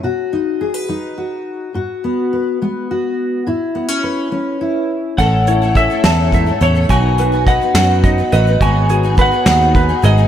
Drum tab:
HH |------|------|------|xxxxxx|
SD |------|------|------|---o--|
BD |------|------|------|o-o-o-|

HH |xxxxxx|xxxxxx|
SD |---o--|---o--|
BD |o-o-o-|o-o-o-|